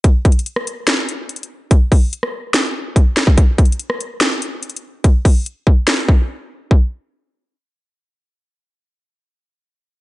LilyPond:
\new DrumStaff \with { instrumentName = "Drums" } \drummode { \time 4/4 \tempo 4 = 144 \tuplet 3/2 { <hh bd>16 r16 r16 <hh bd>16 hh16 hh16 } hh16 ss16 hh8 <hh sn>8 hh8 \tuplet 3/2 { hh16 hh16 hh16 r16 r16 r16 } | <hh bd>8 <hho bd>8 hh16 ss8. <hh sn>4 <hh bd>8 <hh sn>16 bd16 | \tuplet 3/2 { <hh bd>16 r16 r16 <hh bd>16 hh16 hh16 } hh16 ss16 hh8 <hh sn>8 hh8 \tuplet 3/2 { hh16 hh16 hh16 r16 r16 r16 } | <hh bd>8 <hho bd>8 hh8 bd8 <hh sn>8 bd8 r4 |
bd4 r4 r4 r4 | r4 r4 r4 r4 | }